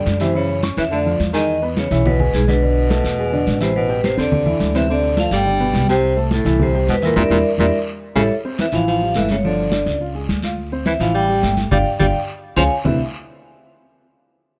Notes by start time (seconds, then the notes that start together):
Already playing: D3 G3 G4 D5 G5
0.06 F#2, high conga, short guiro
0.20 C3 E3 E4 C5 E5, short guiro
0.34 C#3 E3 E4 C#5 E5, high conga, long guiro
0.50 high conga
0.63 C#4 C#5 C#6, high conga, short guiro
0.77 F2 E3 E5, short guiro
0.91 D3 A3 A4 D5 A5, high conga, long guiro
1.06 F3 F4 F5, high conga
1.20 E2, high conga, short guiro
1.33 D#3 G#3 G#4 D#5 G#5, high conga, short guiro
1.49 high conga, long guiro
1.62 B3 B4 B5, high conga
1.76 C#3 C#5, high conga, short guiro
1.91 B1 C#3 E3 E4 C#5 E5, high conga, short guiro
2.05 B2 B4, high conga, low conga, long guiro
2.19 G#3 G#4 G#5, high conga, low conga
2.33 B1 G#2 G#4, high conga, short guiro
2.47 B2 D3 D4 B4 D5, high conga, short guiro
2.62 D3 D4 D5, high conga, long guiro
2.77 high conga
2.90 A3 A4 A5, high conga, short guiro
3.04 E2, short guiro
3.19 G#3 G#4 G#5, high conga, long guiro
3.32 D3 D4 D5, high conga
3.47 A1, high conga, short guiro
3.60 C3 E3 E4 C5 E5, high conga, short guiro
3.76 B2 B4, high conga, long guiro
3.89 G3 G4 G5, high conga
4.03 C3 C5, high conga, short guiro
4.17 E2 C3 D3 C4 C5 D5, high conga, short guiro
4.32 high conga, low conga, long guiro
4.46 E3 E4 E5, high conga, low conga
4.60 D2, high conga, short guiro
4.74 C3 E3 C4 C5 E5, high conga, short guiro
4.89 C3 D3 C4 C5 D5, high conga, long guiro
5.03 high conga
5.17 F3 A3 A4 F5 A5, high conga, short guiro
5.31 G1 G3 G5, short guiro
5.45 D3 D4 D5, high conga, long guiro
5.60 B2 B3 B4, high conga
5.73 C2, high conga, short guiro
5.88 C3 G3 G4 C5 G5, high conga, short guiro
6.03 high conga, long guiro
6.17 A3 A4 A5, high conga
6.31 A2 A4, high conga, short guiro
6.45 C2 E3 E4 E5, high conga, short guiro
6.60 C3 C5, high conga, low conga, long guiro
6.74 G3 G4 G5, high conga
6.88 E2 B2 B4, high conga, short guiro
7.02 A#2 E3 E4 A#4 E5, short guiro
7.16 E2 A#2 D4 E4 G4 A#4 D5 E5, high conga, long guiro
7.30 E2 A#2 D4 E4 G4 A#4 D5 E5, high conga, long guiro
7.58 E2 A#2 D4 E4 G4 A#4 D5 E5, high conga, long guiro
8.15 A1 C#3 E4 G4 A4 C#5 E5, high conga, long guiro
8.30 high conga, long guiro
8.45 C4 C5, high conga
8.58 E3 E5, high conga, short guiro
8.72 A1 E3 F3 E4 F5, high conga, short guiro
8.87 F3 F5, high conga, long guiro
9.01 G3 G4, high conga
9.14 G1 E3 A3 A4 E5, high conga, short guiro
9.29 C#3 C#5, high conga, short guiro
9.43 D3 F3 F4 D5, high conga, long guiro
9.58 high conga
9.72 D4 D5, high conga, short guiro
9.86 C#2, short guiro
10.01 F4 F5, high conga, long guiro
10.15 G#3 G#4, high conga
10.29 D2, high conga, short guiro
10.42 F4 F5, high conga, short guiro
10.58 high conga, long guiro
10.72 C4 C5, high conga
10.86 E3 E5, high conga, short guiro
11.00 A1 E3 F3 E4 F5, high conga, short guiro
11.14 G3 G5, high conga, long guiro
11.29 G3 G4, high conga
11.43 G1 A3 A4, high conga, short guiro
11.57 high conga, short guiro
11.71 G1 G3 D4 F4 G4 D5 F5 G5, low conga, long guiro
11.99 G1 G3 D4 F4 G4 D5 F5 G5, low conga, long guiro
12.56 C#2 F3 C#4 F4 G#4 C#5 F5 G#5, low conga, long guiro
12.84 C2 C3 E3 G3 A3 C4 D4 E4 E5, low conga, long guiro